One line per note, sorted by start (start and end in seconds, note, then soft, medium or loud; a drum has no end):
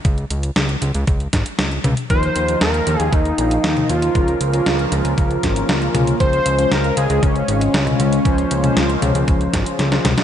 0.05 0.25 C#2 loud
0.05 kick loud
0.05 closed hi-hat soft
0.18 closed hi-hat soft
0.31 0.51 C#2 medium
0.31 closed hi-hat medium
0.43 closed hi-hat soft
0.56 0.76 C#2 medium
0.56 snare loud
0.56 closed hi-hat soft
0.69 closed hi-hat soft
0.82 0.92 C#2 medium
0.82 closed hi-hat medium
0.95 1.05 C#2 loud
0.95 closed hi-hat medium
1.07 1.28 C#2 medium
1.07 kick loud
1.07 closed hi-hat soft
1.20 closed hi-hat soft
1.33 1.43 G#1 medium
1.33 kick medium
1.33 snare medium
1.33 closed hi-hat medium
1.46 closed hi-hat medium
1.59 1.79 C#2 medium
1.59 snare loud
1.59 closed hi-hat medium
1.71 closed hi-hat soft
1.84 1.95 C#2 loud
1.84 closed hi-hat medium
1.84 mid tom medium
1.97 closed hi-hat medium
2.10 2.30 D#2 loud
2.10 4.13 D#3 medium
2.10 6.16 F3 medium
2.10 2.45 F3 medium
2.10 6.16 A#3 medium
2.10 2.45 D#4 medium
2.10 10.24 F4 medium
2.10 2.45 A#4 medium
2.10 2.58 C5 loud
2.10 kick loud
2.10 closed hi-hat medium
2.23 closed hi-hat soft
2.36 2.56 D#2 medium
2.36 closed hi-hat medium
2.48 2.63 F3 medium
2.48 2.63 D#4 medium
2.48 2.63 A#4 medium
2.48 closed hi-hat soft
2.61 2.82 D#2 medium
2.61 3.00 A#4 loud
2.61 snare loud
2.61 closed hi-hat soft
2.74 closed hi-hat soft
2.87 2.97 D#2 medium
2.87 closed hi-hat medium
3.00 3.10 D#2 loud
3.00 3.14 G#4 loud
3.00 closed hi-hat soft
3.13 3.33 D#2 loud
3.13 3.64 D#4 medium
3.13 kick loud
3.13 closed hi-hat soft
3.25 closed hi-hat soft
3.38 3.59 A#1 loud
3.38 closed hi-hat medium
3.51 closed hi-hat soft
3.64 3.84 D#2 loud
3.64 3.88 D#4 medium
3.64 snare loud
3.64 closed hi-hat soft
3.77 closed hi-hat soft
3.77 mid tom medium
3.90 4.10 D#2 medium
3.90 4.63 F4 medium
3.90 closed hi-hat medium
4.02 closed hi-hat soft
4.15 4.35 C#2 loud
4.15 6.18 C#3 medium
4.15 4.51 F3 medium
4.15 4.51 C#4 medium
4.15 4.51 A#4 medium
4.15 kick loud
4.15 closed hi-hat soft
4.28 closed hi-hat soft
4.41 4.61 C#2 medium
4.41 closed hi-hat medium
4.54 6.17 F3 loud
4.54 6.17 C#4 medium
4.54 6.17 A#4 loud
4.54 closed hi-hat soft
4.66 4.87 C#2 medium
4.66 snare loud
4.66 closed hi-hat soft
4.79 closed hi-hat soft
4.92 5.02 C#2 loud
4.92 closed hi-hat medium
5.05 5.15 C#2 loud
5.05 closed hi-hat soft
5.18 5.38 C#2 loud
5.18 kick loud
5.18 closed hi-hat soft
5.31 closed hi-hat soft
5.43 5.64 G#1 loud
5.43 kick medium
5.43 snare medium
5.43 closed hi-hat medium
5.56 closed hi-hat soft
5.69 5.89 C#2 loud
5.69 snare loud
5.69 closed hi-hat medium
5.82 closed hi-hat soft
5.95 6.15 C#2 medium
5.95 closed hi-hat medium
5.95 mid tom medium
6.07 closed hi-hat soft
6.20 6.41 C#2 loud
6.20 10.24 C#3 medium
6.20 6.56 F3 medium
6.20 10.24 G#3 medium
6.20 6.56 C#4 medium
6.20 6.73 C5 loud
6.20 8.23 C5 medium
6.20 6.56 C5 medium
6.20 kick loud
6.20 closed hi-hat medium
6.33 closed hi-hat soft
6.46 6.66 C#2 medium
6.46 closed hi-hat medium
6.59 6.73 F3 medium
6.59 6.73 C#4 medium
6.59 6.73 C5 medium
6.59 closed hi-hat soft
6.71 6.92 C#2 medium
6.71 6.98 A#4 loud
6.71 snare loud
6.71 closed hi-hat medium
6.84 closed hi-hat soft
6.97 7.07 C#2 loud
6.97 7.24 G#4 loud
6.97 closed hi-hat medium
7.10 7.20 C#2 loud
7.10 closed hi-hat medium
7.23 7.43 C#2 loud
7.23 9.79 C#4 medium
7.23 kick loud
7.23 closed hi-hat medium
7.36 closed hi-hat soft
7.48 7.69 G#1 loud
7.48 closed hi-hat medium
7.61 closed hi-hat medium
7.74 7.94 C#2 loud
7.74 snare loud
7.74 closed hi-hat medium
7.87 closed hi-hat soft
7.87 mid tom medium
8.00 8.20 C#2 medium
8.00 closed hi-hat medium
8.13 closed hi-hat medium
8.25 8.46 C#2 loud
8.25 8.61 F3 medium
8.25 10.24 A#3 medium
8.25 8.61 C#4 medium
8.25 8.61 C5 medium
8.25 kick loud
8.25 closed hi-hat medium
8.38 closed hi-hat soft
8.51 8.71 C#2 medium
8.51 closed hi-hat medium
8.64 10.24 F3 loud
8.64 10.24 C#4 medium
8.64 10.24 C5 loud
8.64 closed hi-hat medium
8.64 mid tom medium
8.77 8.97 C#2 medium
8.77 snare loud
8.77 closed hi-hat medium
8.90 closed hi-hat soft
9.02 9.12 C#2 loud
9.02 closed hi-hat medium
9.02 mid tom medium
9.15 9.25 C#2 loud
9.15 closed hi-hat medium
9.28 9.48 C#2 medium
9.28 kick loud
9.28 closed hi-hat medium
9.41 closed hi-hat soft
9.54 9.64 G#1 medium
9.54 kick medium
9.54 snare medium
9.54 closed hi-hat medium
9.66 closed hi-hat medium
9.79 10.00 C#2 medium
9.79 snare medium
9.79 closed hi-hat medium
9.92 snare medium
9.92 closed hi-hat soft
10.05 10.15 C#2 loud
10.05 snare medium
10.05 closed hi-hat medium
10.05 mid tom medium
10.18 snare medium
10.18 closed hi-hat medium